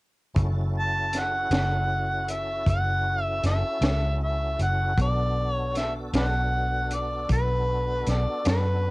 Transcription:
0.35 fingered electric bass F#1, tonewheel organ C#4 E4 F#4 A4, kick, closed hi-hat
0.79 harmonica A5
1.13 snare, closed hi-hat
1.18 harmonica F#5
1.51 fingered electric bass F#1, snare, closed hi-hat
2.29 harmonica E5, closed hi-hat
2.66 fingered electric bass F#1, harmonica F#5, kick, closed hi-hat
3.22 harmonica E5
3.43 fingered electric bass F#1, harmonica E5, snare, closed hi-hat
3.81 fingered electric bass C#2, snare, closed hi-hat
4.23 harmonica E5
4.59 fingered electric bass F#1, harmonica F#5, closed hi-hat
4.97 fingered electric bass B1, tonewheel organ B3 D4 F#4 A4, kick, closed hi-hat
5.02 harmonica D5
5.51 harmonica C#5
5.75 harmonica E5, snare, closed hi-hat
6.13 fingered electric bass B1, harmonica B4 D5 F#5, snare, closed hi-hat
6.91 harmonica D5, closed hi-hat
7.29 fingered electric bass B1, harmonica B4, kick, closed hi-hat
8.06 fingered electric bass B1, harmonica D5, snare, closed hi-hat
8.45 fingered electric bass F#2, harmonica B4, snare, closed hi-hat

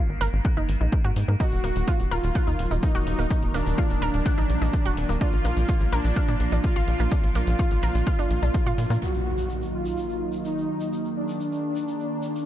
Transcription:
Already playing: synth drone D#3 A#3
0.09 analog synth bass G#1
0.21 analog synth bass G#1, synth arpeggio sound A#4, open hi-hat
0.33 analog synth bass G#1
0.45 synth arpeggio sound F#5, kick
0.57 analog synth bass F#1, synth arpeggio sound D#4
0.69 analog synth bass G#1, open hi-hat
0.81 analog synth bass A#1, synth arpeggio sound D#4
0.92 kick
1.04 analog synth bass G#2, synth arpeggio sound F#4
1.16 analog synth bass G#2, open hi-hat
1.28 analog synth bass G#2, synth arpeggio sound A#3
1.40 analog synth pad D#3 F#3 A#3 A#4, synth arpeggio sound D#4, supersaw synth F#4, kick, closed hi-hat, shaker
1.52 analog synth bass D#1, closed hi-hat, shaker
1.64 analog synth bass D#1, synth arpeggio sound A#3, open hi-hat
1.76 analog synth bass D#1, closed hi-hat, shaker
1.87 synth arpeggio sound F4, kick, closed hi-hat, shaker
2.00 analog synth bass D#1, closed hi-hat, shaker
2.11 analog synth bass D#1, supersaw synth F4, synth arpeggio sound A#4, open hi-hat
2.24 analog synth bass D#1, closed hi-hat, shaker
2.35 synth arpeggio sound F#5, kick, closed hi-hat, shaker
2.47 analog synth bass D#2, synth arpeggio sound D#4, closed hi-hat, shaker
2.59 analog synth bass D#1, open hi-hat
2.71 analog synth bass D#1, synth arpeggio sound D#4, closed hi-hat, shaker
2.82 supersaw synth D#4, kick, open hi-hat, shaker
2.95 analog synth bass D#1, synth arpeggio sound F#4, closed hi-hat, shaker
3.07 analog synth bass D#1, open hi-hat
3.19 analog synth bass D#1, synth arpeggio sound A#3, closed hi-hat, shaker
3.30 synth arpeggio sound D#4, kick, closed hi-hat, shaker
3.43 analog synth bass D#1, closed hi-hat, shaker
3.54 analog synth bass D#1, synth arpeggio sound A#3, supersaw synth D4, open hi-hat
3.66 analog synth bass D#1, closed hi-hat, shaker
3.78 synth arpeggio sound F4, kick, closed hi-hat, shaker
3.90 analog synth bass D#1, closed hi-hat, shaker
4.02 analog synth bass D#1, synth arpeggio sound A#4, open hi-hat
4.14 analog synth bass D#1, closed hi-hat, shaker
4.26 synth arpeggio sound F#5, kick, closed hi-hat, shaker
4.38 analog synth bass A#1, synth arpeggio sound D#4, closed hi-hat, shaker
4.50 analog synth bass A#1, open hi-hat
4.62 analog synth bass A#1, synth arpeggio sound D#4, closed hi-hat, shaker
4.73 kick, closed hi-hat, shaker
4.85 analog synth bass D#1, synth arpeggio sound F#4, closed hi-hat, shaker
4.97 analog synth bass D#1, open hi-hat
5.09 analog synth bass D#1, synth arpeggio sound A#3, closed hi-hat, shaker
5.21 analog synth pad F3 D4 F4, synth arpeggio sound D4, supersaw synth F4, kick, closed hi-hat, shaker
5.33 analog synth bass A#1, closed hi-hat, shaker
5.45 analog synth bass A#1, synth arpeggio sound A#3, open hi-hat
5.57 analog synth bass A#1, closed hi-hat, shaker
5.68 synth arpeggio sound F4, kick, closed hi-hat, shaker
5.80 analog synth bass A#1, closed hi-hat, shaker
5.92 analog synth bass A#1, supersaw synth D4, synth arpeggio sound A#4, open hi-hat
6.04 analog synth bass A#1, closed hi-hat, shaker
6.16 synth arpeggio sound F5, kick, closed hi-hat, shaker
6.28 analog synth bass A#2, synth arpeggio sound D4, closed hi-hat, shaker
6.40 analog synth bass A#1, open hi-hat
6.52 analog synth bass A#1, synth arpeggio sound D4, closed hi-hat, shaker
6.63 supersaw synth F4, kick, open hi-hat, shaker
6.76 analog synth bass A#1, synth arpeggio sound F4, closed hi-hat, shaker
6.88 analog synth bass A#1, open hi-hat
7.00 analog synth bass A#1, synth arpeggio sound A#3, closed hi-hat, shaker
7.11 synth arpeggio sound D4, kick, closed hi-hat, shaker
7.23 analog synth bass A#1, closed hi-hat, shaker
7.35 analog synth bass A#1, synth arpeggio sound A#3, supersaw synth F4, open hi-hat
7.47 analog synth bass A#1, closed hi-hat, shaker
7.59 synth arpeggio sound F4, kick, closed hi-hat, shaker
7.71 analog synth bass A#1, closed hi-hat, shaker
7.83 analog synth bass A#1, synth arpeggio sound A#4, open hi-hat
7.95 analog synth bass A#1, closed hi-hat, shaker
8.07 synth arpeggio sound F5, kick, closed hi-hat, shaker
8.19 analog synth bass G#1, synth arpeggio sound D4, closed hi-hat, shaker
8.30 analog synth bass A#1, open hi-hat
8.42 analog synth bass B1, synth arpeggio sound D4, closed hi-hat, shaker
8.54 kick, closed hi-hat, shaker
8.66 analog synth bass A#2, synth arpeggio sound F4, closed hi-hat, shaker
8.78 analog synth bass A#2, open hi-hat
8.90 analog synth bass A#2, synth arpeggio sound A#3, open hi-hat, shaker
9.02 synth drone D#3 A#3, analog synth pad D#3 F#3 A#3 D#4, supersaw synth F#4, impact, shaker
9.14 shaker
9.26 closed hi-hat
9.38 shaker
9.50 closed hi-hat, shaker
9.62 closed hi-hat, shaker
9.73 supersaw synth F4
9.85 shaker
9.97 shaker
10.09 shaker
10.21 closed hi-hat
10.32 shaker
10.45 supersaw synth D#4, closed hi-hat, shaker
10.57 shaker
10.69 closed hi-hat
10.81 closed hi-hat, shaker
10.92 analog synth pad G#4, closed hi-hat, shaker
11.05 closed hi-hat, shaker
11.16 supersaw synth D4, closed hi-hat
11.29 shaker
11.40 closed hi-hat, shaker
11.52 closed hi-hat, shaker
11.64 closed hi-hat
11.76 shaker
11.88 closed hi-hat, shaker
12.00 closed hi-hat, shaker
12.11 closed hi-hat
12.23 closed hi-hat, shaker
12.35 closed hi-hat, shaker

